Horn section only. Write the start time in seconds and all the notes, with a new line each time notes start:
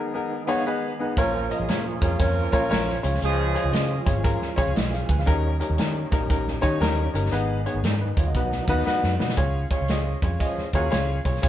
1.18 F3 A#3 C#4 A#4
1.60 F3 G#3 C#4 G#4
2.03 G#3 F4 G#4
2.19 F3 A#3 C#4 A#4
3.23 F3 G#3 C#4 G#4
9.71 G#3 C#4 F4 C#5
10.41 F3 G#3 C#4 G#4
10.74 A#3 F#4 A#4